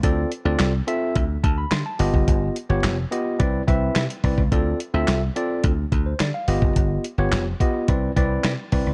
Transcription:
<<
  \new Staff \with { instrumentName = "Tine electric piano" } { \time 4/4 \key d \dorian \tempo 4 = 107 << { r2 r8 a''16 b''16 c'''16 a''8 r16 | r1 | r2 r8. c''16 d''16 f''8 r16 | r1 | } \\ { <c' f' a' d''>8 r16 <c' f' a' d''>8 r16 <c' f' a' e''>8. r4 r16 <b f' g' dis''>8~ | <b f' g' dis''>8 r16 <b f' g' cis''>8 r16 <b f' g' dis''>8 <c' e' b' d''>8 <c' e' b' e''>8. r16 <c' e' b' d''>16 r16 | <c' f' a' d''>8 r16 <c' f' a' e''>8 r16 <c' f' a' d''>8. r4 r16 <b f' g' dis''>8~ | <b f' g' dis''>8 r16 <b f' g' cis''>8 r16 <b f' g' dis''>8 <c' e' b' d''>8 <c' e' b' d''>8. r16 <c' e' b' d''>16 r16 | } >> }
  \new Staff \with { instrumentName = "Slap bass" } { \clef bass \time 4/4 \key d \dorian d,8 r16 d,16 c,8 r8 d,8 d,8 d16 r16 g,,16 fis,,16 | g,,8 r16 g,,16 f,,8 r8 c,8 c,8 c16 r16 c,16 cis,16 | d,8 r16 d,16 c,8 r8 d,8 d,8 d16 r16 g,,16 fis,,16 | g,,8 r16 g,,16 f,,8 r8 c,8 c,8 c16 r16 c,16 cis,16 | }
  \new DrumStaff \with { instrumentName = "Drums" } \drummode { \time 4/4 <hh bd>8 hh8 <hc hh sn>8 hh8 <hh bd>8 <hh bd>8 <hc hh sn>8 hho16 bd16 | <hh bd>8 hh8 <hc hh sn>8 hh8 <hh bd>8 <hh bd>8 <hc hh sn>16 hh16 <hho bd>16 bd16 | <hh bd>8 hh8 <hc hh sn>8 hh8 <hh bd>8 <hh bd>8 <hc hh sn>8 hho16 bd16 | <hh bd>8 hh8 <hc hh sn>8 <hh bd>8 <hh bd>8 <hh bd>8 <hc hh sn>8 <hho bd>8 | }
>>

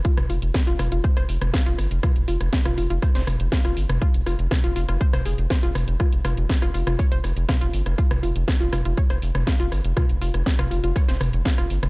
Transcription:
<<
  \new Staff \with { instrumentName = "Synth arpeggio sound" } { \time 4/4 \key c \phrygian \tempo 4 = 121 f'16 r16 f'16 r8 f'16 f'16 f'16 c''16 c''16 r8 f''16 f'16 r8 | f'16 r16 f'16 r8 f'16 f'16 f'16 c''16 c''16 r8 f''16 f'16 r8 | f'16 r16 f'16 r8 f'16 f'16 f'16 c''16 c''16 aes'16 r16 c''16 f'16 r8 | f'16 r16 f'16 r8 f'16 f'16 f'16 des''16 c''16 r8 f''16 f'16 r8 |
f'16 r16 f'16 r8 f'16 f'16 f'16 des''16 c''16 r8 f''16 f'16 r8 | f'16 r16 f'16 r8 f'16 f'16 f'16 des''16 c''16 r8 f''16 f'16 r8 | }
  \new Staff \with { instrumentName = "Analog synth bass" } { \clef bass \time 4/4 \key c \phrygian r16 f,,16 f,,16 f,,16 r16 f,,16 f,,16 f,,16 r16 f,,16 f,,16 f,,16 r16 f,,16 g,,16 f,,16 | r16 f,,16 f,,16 f,,16 r16 f,,16 f,,16 f,,16 r16 f,,16 f,,16 f,,16 r16 f,,16 g,,16 f,,16 | r16 f,,16 f,,16 f,,16 r16 f,,16 f,,16 f,,16 r16 f,,16 f,,16 f,,16 r16 f,,16 f,,16 f,,16 | r16 f,,16 f,,16 f,,16 r16 f,,16 f,,16 f,,16 r16 f,,16 f,,16 f,,16 r16 f,,16 g,,16 f,,16 |
r16 f,,16 f,,16 f,,16 r16 f,,16 f,,16 f,,16 r16 f,,16 f,,16 f,,16 r16 f,,16 g,,16 f,,16 | r16 f,,16 f,,16 f,,16 r16 f,,16 f,,16 f,,16 r16 f,,16 f,,16 f,,16 r16 f,,16 g,,16 f,,16 | }
  \new DrumStaff \with { instrumentName = "Drums" } \drummode { \time 4/4 <hh bd>16 <hh ss toml>16 hho16 hh16 <hh bd ss sn>16 hh16 <hho ss toml>16 hh16 <hh bd>16 <hho ss>16 hho16 <hh ss toml>16 <hh bd sn>16 hh16 <hho ss>16 hh16 | <hh bd ss toml>16 hh16 hho16 <hh ss>16 <hh bd sn>16 <hh ss toml>16 hho16 hh16 <hho bd ss>16 <hh sn>16 <hho ss toml>16 hh16 <hh bd sn>16 <hh ss>16 hho16 <hh ss toml>16 | <hh bd>16 hh16 <hho ss>16 hh16 <hh bd ss sn toml>16 hh16 hho16 <hh ss>16 <hh bd>16 <hho ss toml>16 hho16 hh16 <hh bd ss sn>16 hh16 <hho ss toml>16 hh16 | <hh bd ss>16 hh16 <hho ss toml>16 hh16 <hh bd sn>16 <hh ss>16 hho16 <hh ss toml>16 <hho bd>16 hh16 <hho ss>16 hh16 <hh bd ss sn toml>16 hh16 hho16 <hh ss>16 |
<hh bd>16 <hh ss toml>16 hho16 hh16 <hh bd ss sn>16 hh16 <hho ss toml>16 hh16 <hh bd>16 <hho ss>16 hho16 <hh ss toml>16 <hh bd sn>16 hh16 <hho ss>16 hh16 | <hh bd ss toml>16 hh16 hho16 <hh ss>16 <hh bd sn>16 <hh ss toml>16 hho16 hh16 <hho bd ss>16 <hh sn>16 <hho ss toml>16 hh16 <hh bd sn>16 <hh ss>16 hho16 <hh ss toml>16 | }
>>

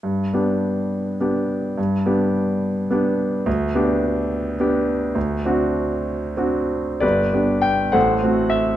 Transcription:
\new Staff \with { instrumentName = "Grand piano" } { \time 6/8 \key g \major \tempo 4. = 70 << { r2. | r2. | r2. | r2. |
<g' b' d''>4 g''8 <a' c'' fis''>4 e''8 | } \\ { g,8 <b d' g'>4. <b d' g'>4 | g,8 <b d' g'>4. <b d' g'>4 | d,8 <b d' g'>4. <b d' g'>4 | d,8 <c' d' fis'>4. <c' d' fis'>4 |
g,,8 <b d' g'>4 a,,8 <a c' fis'>4 | } >> }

